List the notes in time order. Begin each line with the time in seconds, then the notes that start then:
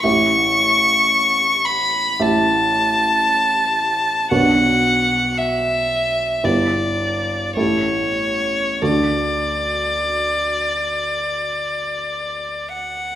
0.03 A1 E4 G4 E5 C#6
1.65 B5
2.20 A1 E4 G4 E5 A5
4.31 B1 D4 F#4 B4 F#5
5.38 E5
6.44 G1 E4 G4 B4 D5
7.56 A1 E4 G4 A4 C#5
8.81 D2 D4 F#4 A4 D5
12.73 F#5